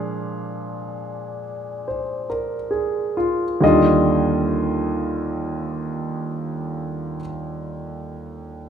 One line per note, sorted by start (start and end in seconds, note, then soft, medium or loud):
0.00 3.61 A#2 soft
0.00 3.61 F3 soft
0.00 3.62 G#3 soft
0.00 3.63 D4 medium
0.00 2.26 G#4 medium
0.00 2.26 D5 medium
0.00 2.26 F5 medium
1.88 2.55 C5 soft
2.30 3.14 A#4 soft
2.71 3.43 G#4 soft
3.17 3.62 F4 soft
3.61 7.16 D#2 medium
3.61 7.17 D3 soft
3.61 7.19 G3 soft
3.61 7.20 F4 medium
3.61 7.16 D#5 medium